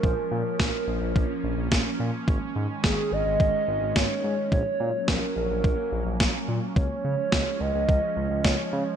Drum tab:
SD |--o---o-|--o---o-|--o---o-|--o---o-|
BD |o-o-o-o-|o-o-o-o-|o-o-o-o-|o-o-o-o-|